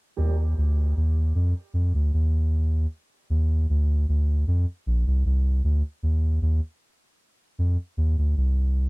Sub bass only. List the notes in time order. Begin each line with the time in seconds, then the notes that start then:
0.18 D#2
0.57 D2
0.97 D#2
1.35 F2
1.74 F2
1.94 D2
2.13 D#2
3.30 D#2
3.70 D2
4.09 D2
4.47 F2
4.86 A#1
5.07 C2
5.25 C2
5.64 D2
6.03 D#2
6.42 D#2
7.59 F2
7.97 D#2
8.18 D2
8.37 C2